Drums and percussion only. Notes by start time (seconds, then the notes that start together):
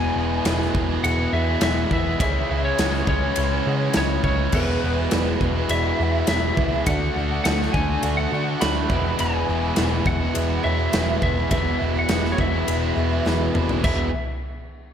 0.45 snare, ride bell
0.62 snare
0.75 kick
1.04 ride bell
1.61 snare, ride bell
1.91 kick
2.20 kick, ride bell
2.79 snare, ride bell
2.94 snare
3.07 kick
3.36 ride bell
3.93 snare, ride bell
4.24 kick
4.52 kick, crash
5.11 snare, ride bell
5.41 kick
5.69 ride bell
6.27 snare, ride bell
6.57 kick
6.86 kick, ride bell
7.45 snare, ride bell
7.62 snare
7.74 kick
8.03 ride bell
8.61 snare, ride bell
8.90 kick
9.19 ride bell
9.76 snare, ride bell
10.06 kick
10.35 ride bell
10.93 snare, ride bell
11.22 kick
11.51 kick, ride bell
12.09 snare, ride bell
12.25 snare
12.38 kick
12.68 ride bell
13.26 snare
13.55 mid tom
13.69 floor tom
13.84 kick, crash